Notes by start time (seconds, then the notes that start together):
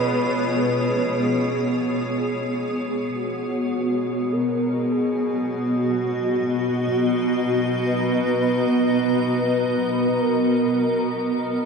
Already playing: B2 B3 F4 G#4 B4 C#5 D#6
3.14 B2 F#4
3.88 F#4
4.32 A#4
4.91 G#4
5.09 D#5
5.50 F#4
6.32 A#5
7.86 B4
9.04 B4
10.21 A#4
11.38 A#4